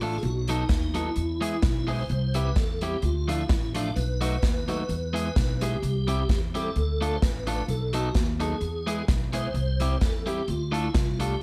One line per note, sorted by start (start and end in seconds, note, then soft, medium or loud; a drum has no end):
0.00 0.16 A1 medium
0.00 0.16 A3 medium
0.00 0.16 D4 medium
0.00 0.19 F4 medium
0.00 0.16 F4 medium
0.00 0.16 A4 medium
0.00 open hi-hat medium
0.18 0.23 G#4 medium
0.23 0.62 B1 loud
0.23 0.48 F#4 loud
0.23 closed hi-hat medium
0.48 0.63 F#3 medium
0.48 0.63 B3 medium
0.48 0.63 D#4 medium
0.48 0.97 D#4 medium
0.48 0.63 A4 loud
0.48 closed hi-hat medium
0.69 1.09 D#2 medium
0.69 kick loud
0.69 snare loud
0.69 closed hi-hat medium
0.94 1.09 F#3 medium
0.94 1.09 B3 medium
0.94 1.09 D#4 medium
0.94 1.92 E4 medium
0.94 1.09 A4 loud
0.94 closed hi-hat medium
1.16 1.56 E2 medium
1.16 closed hi-hat medium
1.41 1.55 G#3 medium
1.41 1.55 B3 medium
1.41 1.56 E4 loud
1.41 1.56 G#4 medium
1.41 closed hi-hat loud
1.62 2.02 B1 loud
1.62 kick loud
1.62 snare loud
1.62 closed hi-hat medium
1.87 2.02 G#3 medium
1.87 2.02 B3 medium
1.87 2.02 E4 medium
1.87 2.03 G#4 loud
1.87 2.37 C5 loud
1.87 open hi-hat medium
2.09 2.49 C2 loud
2.09 closed hi-hat medium
2.34 2.49 G3 medium
2.34 2.49 C4 medium
2.34 2.49 E4 medium
2.34 2.49 G4 medium
2.34 2.57 B4 medium
2.34 closed hi-hat medium
2.56 2.96 E2 medium
2.56 2.83 A4 medium
2.56 kick loud
2.56 snare loud
2.56 closed hi-hat medium
2.81 2.96 G3 medium
2.81 2.96 C4 medium
2.81 2.96 E4 medium
2.81 2.96 G4 medium
2.81 3.04 G4 loud
2.81 closed hi-hat medium
3.02 3.42 D2 loud
3.02 3.30 F4 medium
3.02 closed hi-hat medium
3.28 3.42 F3 medium
3.28 3.42 A3 medium
3.28 3.43 D4 medium
3.28 3.49 E4 medium
3.28 3.43 F4 medium
3.28 closed hi-hat loud
3.49 3.89 A1 loud
3.49 3.73 E4 medium
3.49 muted clean electric guitar stroke soft
3.49 kick loud
3.49 snare loud
3.49 closed hi-hat medium
3.75 3.89 F3 medium
3.75 3.89 A3 medium
3.75 3.94 D4 medium
3.75 3.89 D4 medium
3.75 3.90 F4 medium
3.75 closed hi-hat loud
3.96 4.36 B1 loud
3.96 5.66 B4 loud
3.96 closed hi-hat medium
4.21 4.35 F#3 medium
4.21 4.35 A3 medium
4.21 4.36 D#4 loud
4.21 4.36 F#4 loud
4.21 closed hi-hat medium
4.42 4.82 D#2 medium
4.42 kick loud
4.42 snare loud
4.42 closed hi-hat medium
4.68 4.82 F#3 medium
4.68 4.83 A3 medium
4.68 4.83 D#4 medium
4.68 4.83 F#4 medium
4.68 closed hi-hat medium
4.89 5.29 E2 loud
4.89 closed hi-hat medium
5.13 5.28 G#3 medium
5.13 5.28 B3 medium
5.13 5.28 E4 medium
5.13 5.29 G#4 medium
5.13 closed hi-hat medium
5.36 5.76 B1 loud
5.36 kick loud
5.36 snare loud
5.36 closed hi-hat medium
5.61 5.76 G#3 medium
5.61 5.76 B3 medium
5.61 5.76 E4 medium
5.61 6.29 G4 medium
5.61 5.76 G#4 medium
5.61 closed hi-hat loud
5.82 6.22 C2 loud
5.82 closed hi-hat medium
6.07 6.22 G3 medium
6.07 6.22 C4 medium
6.07 6.22 E4 medium
6.07 6.22 G4 medium
6.07 closed hi-hat medium
6.29 6.69 E2 medium
6.29 6.41 G4 medium
6.29 kick loud
6.29 snare loud
6.29 closed hi-hat medium
6.55 6.69 G3 medium
6.55 6.69 C4 medium
6.55 6.69 E4 medium
6.55 6.69 G4 medium
6.55 6.77 A4 medium
6.55 closed hi-hat medium
6.76 7.15 D2 loud
6.76 7.18 A4 medium
6.76 closed hi-hat medium
7.01 7.15 A3 medium
7.01 7.16 D4 medium
7.01 7.16 F4 loud
7.01 7.16 A4 medium
7.01 closed hi-hat medium
7.16 7.22 C5 medium
7.22 7.62 A1 loud
7.22 7.66 B4 medium
7.22 muted clean electric guitar stroke soft
7.22 kick loud
7.22 snare loud
7.22 closed hi-hat medium
7.47 7.61 A3 medium
7.47 7.62 D4 medium
7.47 7.62 F4 medium
7.47 7.62 A4 loud
7.47 closed hi-hat loud
7.68 8.08 B1 loud
7.68 7.95 A4 medium
7.68 closed hi-hat medium
7.93 8.08 F#3 medium
7.93 8.08 B3 medium
7.93 8.08 D#4 loud
7.93 8.15 F#4 medium
7.93 8.09 A4 medium
7.93 closed hi-hat medium
8.15 8.55 D#2 medium
8.15 8.28 F#4 medium
8.15 kick loud
8.15 snare loud
8.15 closed hi-hat medium
8.40 8.55 F#3 medium
8.40 8.55 B3 medium
8.40 8.55 D#4 loud
8.40 9.05 G#4 medium
8.40 8.55 A4 medium
8.40 closed hi-hat medium
8.61 9.01 E2 medium
8.61 closed hi-hat medium
8.87 9.01 G#3 medium
8.87 9.01 B3 medium
8.87 9.01 E4 loud
8.87 9.02 G#4 loud
8.87 closed hi-hat medium
9.08 9.48 B1 loud
9.08 kick loud
9.08 snare loud
9.08 closed hi-hat medium
9.33 9.48 G#3 medium
9.33 9.48 B3 medium
9.33 9.48 E4 medium
9.33 9.48 G#4 medium
9.33 9.98 C5 loud
9.33 closed hi-hat loud
9.54 9.94 C2 loud
9.54 closed hi-hat medium
9.80 9.95 G3 medium
9.80 9.95 C4 medium
9.80 9.95 E4 medium
9.80 9.95 G4 medium
9.80 closed hi-hat medium
10.01 10.41 E2 medium
10.01 10.28 A4 medium
10.01 kick loud
10.01 snare loud
10.01 closed hi-hat medium
10.26 10.41 G3 medium
10.26 10.41 C4 medium
10.26 10.41 E4 medium
10.26 10.42 G4 medium
10.26 10.50 G4 medium
10.26 closed hi-hat medium
10.48 10.88 D2 medium
10.48 10.75 F4 loud
10.48 closed hi-hat medium
10.72 10.87 A3 loud
10.72 10.87 D4 medium
10.72 10.87 F4 loud
10.72 10.88 A4 medium
10.72 closed hi-hat medium
10.76 10.97 E4 medium
10.94 11.34 C2 medium
10.94 11.19 F4 medium
10.94 muted clean electric guitar stroke soft
10.94 kick loud
10.94 snare loud
10.94 closed hi-hat medium
11.20 11.34 A3 medium
11.20 11.34 D4 medium
11.20 11.35 F4 loud
11.20 11.41 G4 medium
11.20 11.35 A4 loud
11.20 closed hi-hat loud